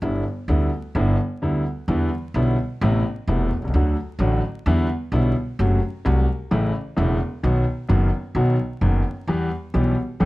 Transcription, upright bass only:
0.02 0.21 G1 loud
0.48 0.68 D2 loud
0.95 1.15 G1 loud
1.88 2.08 E2 loud
2.34 2.54 B1 loud
2.81 3.01 A1 loud
3.28 3.47 E1 loud
3.57 3.62 B1 medium
3.62 3.67 C2 medium
3.67 3.73 C#2 medium
3.74 3.93 D2 loud
4.19 4.39 A1 loud
4.66 4.86 E2 loud
5.12 5.32 B1 loud
5.59 5.78 F#1 loud
6.06 6.25 C2 loud
6.51 6.70 A1 loud
6.98 7.17 E1 loud
7.44 7.63 B1 loud
7.89 8.09 F#1 loud
8.35 8.55 B1 loud
8.81 9.01 F#1 loud
9.27 9.47 E2 medium
9.74 9.94 B1 loud
10.21 10.25 A1 medium

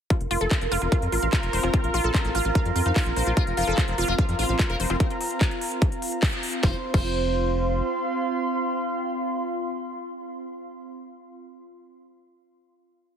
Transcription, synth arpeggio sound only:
0.10 0.18 F4 medium
0.31 0.38 F4 loud
0.41 0.46 A4 loud
0.51 0.54 F4 medium
0.72 0.76 F4 loud
0.82 0.89 F4 medium
0.92 0.97 F5 medium
1.12 1.17 F4 medium
1.23 1.30 F5 medium
1.33 1.36 F4 medium
1.53 1.58 C5 medium
1.63 1.71 F4 medium
1.74 1.81 F4 medium
1.94 2.01 F4 loud
2.04 2.09 A4 loud
2.14 2.17 F4 medium
2.35 2.40 F4 loud
2.45 2.52 F4 medium
2.55 2.60 F5 medium
2.76 2.80 F4 medium
2.86 2.93 F5 medium
2.96 2.99 F4 medium
3.16 3.21 C5 medium
3.27 3.34 F4 medium
3.57 3.64 F4 loud
3.67 3.72 A4 loud
3.78 3.81 F4 medium
3.98 4.03 F4 loud
4.08 4.15 F4 medium
4.19 4.23 F5 medium
4.39 4.44 F4 medium
4.49 4.56 F5 medium
4.59 4.62 F4 medium
4.80 4.85 C5 medium
4.90 4.97 F4 medium
6.63 6.75 F4 medium
6.94 7.05 F4 loud

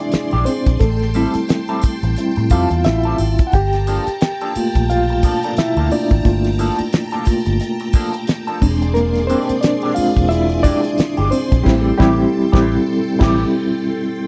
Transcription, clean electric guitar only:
0.13 muted clean electric guitar stroke soft
0.33 0.46 E3 medium
0.33 0.46 G#3 medium
0.33 0.46 D4 medium
0.33 0.46 G4 medium
0.67 muted clean electric guitar stroke soft
1.15 1.33 G3 medium
1.15 1.33 C4 medium
1.15 1.33 E4 medium
1.15 1.33 A4 medium
1.49 muted clean electric guitar stroke soft
1.69 1.82 G3 medium
1.69 1.82 C4 medium
1.69 1.82 E4 medium
1.69 1.82 A4 medium
1.84 muted clean electric guitar stroke soft
2.04 muted clean electric guitar stroke soft
2.18 muted clean electric guitar stroke soft
2.37 muted clean electric guitar stroke soft
2.51 2.69 G3 medium
2.51 2.69 C4 medium
2.51 2.69 E4 medium
2.51 2.70 A4 medium
2.71 muted clean electric guitar stroke soft
2.86 muted clean electric guitar stroke soft
3.05 3.19 G3 medium
3.05 3.19 C4 medium
3.05 3.18 E4 medium
3.05 3.18 A4 medium
3.21 muted clean electric guitar stroke soft
3.40 muted clean electric guitar stroke soft
3.87 4.05 F3 medium
3.87 4.05 A#3 medium
3.87 4.06 D4 medium
3.87 4.06 A4 medium
4.22 muted clean electric guitar stroke soft
4.42 4.55 F3 medium
4.42 4.55 A#3 medium
4.42 4.54 D4 medium
4.42 4.54 A4 medium
4.76 muted clean electric guitar stroke soft
4.90 muted clean electric guitar stroke soft
5.10 muted clean electric guitar stroke soft
5.24 5.38 F3 medium
5.24 5.38 A#3 medium
5.24 5.38 D4 medium
5.24 5.38 A4 medium
5.44 5.54 F3 soft
5.44 5.54 A#3 soft
5.44 5.54 D4 medium
5.44 5.54 A4 medium
5.77 5.91 F3 medium
5.77 5.90 A#3 medium
5.77 5.90 D4 medium
5.77 5.90 A4 medium
5.92 muted clean electric guitar stroke soft
6.12 muted clean electric guitar stroke soft
6.59 6.77 F3 medium
6.59 6.77 A#3 medium
6.59 6.77 D4 medium
6.59 6.77 A4 medium
6.93 muted clean electric guitar stroke soft
7.12 7.26 F3 medium
7.12 7.26 A#3 medium
7.12 7.25 D4 medium
7.12 7.25 A4 medium
7.27 muted clean electric guitar stroke soft
7.46 muted clean electric guitar stroke soft
7.61 muted clean electric guitar stroke soft
7.81 muted clean electric guitar stroke soft
7.95 8.12 F3 medium
7.95 8.12 A#3 medium
7.95 8.12 D4 medium
7.95 8.13 A4 medium
8.14 muted clean electric guitar stroke soft
8.28 muted clean electric guitar stroke soft
8.47 8.61 F3 medium
8.47 8.61 A#3 medium
8.47 8.61 D4 medium
8.47 8.60 A4 medium
8.61 muted clean electric guitar stroke soft
8.82 muted clean electric guitar stroke soft
9.29 9.47 E3 medium
9.29 9.47 G#3 medium
9.29 9.48 D4 medium
9.29 9.48 G4 medium
9.64 muted clean electric guitar stroke soft
9.83 9.95 E3 medium
9.83 9.96 G#3 medium
9.83 9.96 D4 medium
9.83 9.96 G4 medium
9.96 muted clean electric guitar stroke soft
10.16 muted clean electric guitar stroke soft
10.30 muted clean electric guitar stroke soft
10.49 muted clean electric guitar stroke medium
10.64 10.82 E3 medium
10.64 10.82 G#3 medium
10.64 10.83 D4 medium
10.64 10.82 G4 loud
10.84 muted clean electric guitar stroke soft
10.97 muted clean electric guitar stroke soft
11.17 11.31 E3 medium
11.17 11.31 G#3 medium
11.17 11.31 D4 medium
11.17 11.31 G4 medium
11.52 muted clean electric guitar stroke soft
11.65 11.90 E3 medium
11.65 11.90 A3 medium
11.65 11.90 C4 medium
11.65 11.91 G4 medium
11.99 12.24 E3 medium
11.99 12.24 A3 loud
11.99 12.24 C4 loud
11.99 12.24 G4 loud
12.52 12.76 E3 loud
12.52 12.75 A3 medium
12.52 12.75 C4 loud
12.52 12.75 G4 medium
13.20 13.43 E3 loud
13.20 13.43 A3 loud
13.20 13.43 C4 loud
13.20 13.44 G4 medium

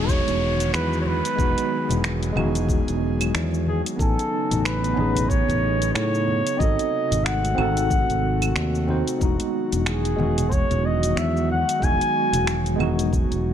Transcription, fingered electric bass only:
0.00 0.21 E1 medium
0.27 0.70 E1 medium
0.73 1.19 E2 medium
1.38 1.54 E1 loud
1.90 2.32 E1 medium
2.36 2.82 E1 loud
2.88 3.30 E1 medium
3.34 3.80 E2 medium
3.99 4.15 A1 loud
4.51 4.93 A1 medium
4.97 5.43 A1 medium
5.49 5.91 A1 medium
5.95 6.41 A2 medium
6.60 6.75 G#1 loud
7.11 7.54 G#1 medium
7.58 8.04 G#1 medium
8.09 8.52 G#1 medium
8.56 9.02 D#2 medium
9.21 9.37 E1 loud
9.72 10.15 E1 medium
10.18 10.65 E1 medium
10.69 11.12 E1 medium
11.16 11.62 E2 medium
11.82 11.97 E1 loud
12.33 12.75 E1 medium
12.79 13.25 E1 loud
13.31 13.54 E1 medium

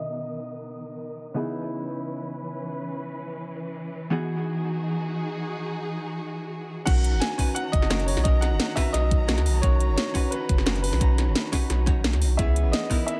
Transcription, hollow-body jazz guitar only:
0.00 1.33 B2 medium
0.00 1.34 D#3 medium
0.00 1.33 C#4 medium
0.00 1.34 F#4 medium
0.00 1.34 A#4 medium
1.34 4.09 C#3 medium
1.34 4.09 B3 medium
1.34 4.09 D#4 medium
1.34 4.10 E4 medium
1.34 4.10 G#4 medium
4.10 6.85 E3 medium
4.10 6.85 B3 medium
4.10 6.85 D#4 medium
4.10 6.85 F#4 medium
4.10 6.86 G#4 medium
6.86 7.36 C#4 medium
6.86 7.37 D#4 medium
6.86 7.37 F#4 medium
6.86 7.37 A#4 medium
7.38 7.88 C#4 medium
7.38 7.88 D#4 medium
7.38 7.89 F#4 medium
7.38 7.89 B4 medium
7.90 8.23 C#4 medium
7.90 8.23 D#4 medium
7.90 8.23 F#4 medium
7.90 8.23 A#4 medium
8.24 8.74 C#4 medium
8.24 8.75 D#4 medium
8.24 8.75 F#4 medium
8.24 8.75 A#4 medium
8.76 9.26 C#4 medium
8.76 9.26 D#4 medium
8.76 9.27 F#4 medium
8.76 9.27 B4 loud
9.28 9.61 C#4 medium
9.28 9.61 D#4 medium
9.28 9.61 F#4 medium
9.28 9.61 A#4 medium
9.62 10.12 C#4 medium
9.62 10.13 D#4 medium
9.62 10.13 F#4 medium
9.62 10.13 A#4 medium
10.14 10.64 C#4 medium
10.14 10.64 D#4 medium
10.14 10.65 F#4 medium
10.14 10.65 B4 medium
10.66 10.99 C#4 medium
10.66 10.99 D#4 medium
10.66 10.99 F#4 medium
10.66 10.99 A#4 medium
11.00 11.50 C#4 medium
11.00 11.51 D#4 medium
11.00 11.51 F#4 medium
11.00 11.51 A#5 medium
11.52 11.85 C#4 medium
11.52 11.86 D#4 medium
11.52 11.86 F#4 medium
11.52 11.86 B4 medium
11.86 12.36 C#4 loud
11.86 12.37 D#4 medium
11.86 12.37 F#4 medium
11.86 12.37 C#5 loud
12.38 12.88 B3 medium
12.38 12.89 C#4 medium
12.38 12.89 E4 medium
12.38 12.89 G#4 medium
12.90 13.20 B3 medium
12.90 13.20 D#4 medium
12.90 13.20 E4 medium
12.90 13.20 A#4 medium

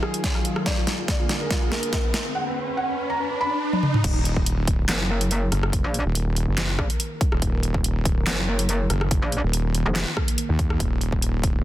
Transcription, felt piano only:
0.03 0.58 G#4 medium
0.66 0.75 D5 loud
0.77 0.85 F4 medium
0.87 0.96 F4 medium
0.98 1.06 F4 medium
1.08 1.17 D5 medium
1.20 1.27 F4 medium
1.29 1.38 F4 medium
1.41 1.48 A#4 medium
1.51 1.59 F4 medium
1.62 1.69 F4 medium
1.72 2.27 A#4 medium
2.35 2.44 F#5 medium
2.46 2.54 B4 medium
2.56 2.65 B4 medium
2.67 2.75 B4 medium
2.77 2.86 F#5 medium
2.88 2.96 B4 medium
2.98 3.07 B4 medium
3.10 3.17 A#5 medium
3.20 3.28 B4 medium
3.31 3.38 B4 medium
3.41 3.96 B5 loud

